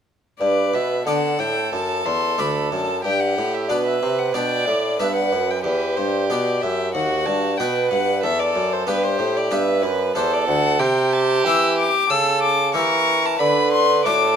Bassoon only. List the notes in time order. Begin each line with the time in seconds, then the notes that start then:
0.40 G2
0.73 B2
1.06 D3
1.39 A2
1.72 F#2
2.06 E2
2.39 D2
2.72 F#2
3.05 G2
3.37 A2
3.69 B2
4.02 C3
4.34 B2
4.67 A2
5.00 G2
5.33 F#2
5.65 E2
5.98 G2
6.30 B2
6.63 F#2
6.95 D#2
7.27 G2
7.60 B2
7.91 G2
8.24 E2
8.55 F#2
8.87 G2
9.20 A2
9.51 G2
9.83 F#2
10.15 E2
10.47 D2
10.79 C3
11.45 E3
12.11 C#3
12.75 E3
13.40 D3
14.05 A2